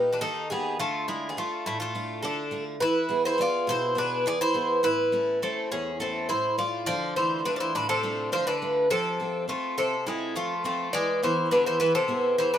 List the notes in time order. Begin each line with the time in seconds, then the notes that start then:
Already playing: A#2 A#3 D#4 G4
0.13 D4 B4
0.21 D#3 D#4 A4
0.50 A#3 B3 D#4 G4 G#4
0.79 D3 A3 F4
1.08 G#3 A3 D4 E4 F4
1.29 B3 G#4
1.37 A3 D4 F4
1.66 A2 A3 E4
1.80 A3 F4
1.95 A3 D4 F4
2.23 D3 D4 A4
2.51 A3 D4 F4
2.80 E3 E4 B4
3.09 B3 E4 G#4
3.25 E4 C5
3.38 B3 E4 F4 G#4 D5
3.67 B2 E4 C5
3.95 B3 D4 E4 G#4 B4
4.26 E3 G#4 D5
4.41 E4 C5
4.54 B3 E4 G#4
4.83 A2 E4 B4
5.12 A3 C#4 E4
5.42 A3 C4 C#4 E4 A4
5.72 E2 C#4 G#4
6.00 A3 C4 C#4 E4 A4
6.29 A2 E4 C5
6.58 A3 C#4 E4 F4 D5
6.86 D3 F3 D5
7.16 E3 A3 D4 F4 C5
7.45 D3 A3 D4 F4 B4
7.56 F3 D5
7.60 E3 C5
7.75 A2 D3 B4
7.89 C3 A4
8.03 A3 D4 F4
8.32 D3 F3 C5
8.47 D3 B4
8.62 A3 D4 F4
8.90 C3 F3 A4
9.20 C4 F4 A4
9.48 A3 C4 F4 A4
9.77 C3 A4
10.06 G#3 C4 E4 F4 A4
10.35 F3 A3 F4
10.64 A3 C4 F4 A4
10.93 E3 G#3 D5
11.23 E3 B3 E4 G#4 C5
11.51 D3 B3 E4 G#4 B4
11.66 E3 C5
11.80 E3 B3 B4
11.95 C3 A4
12.08 B3 E4 G#4
12.38 E3 C5
12.54 D3 B4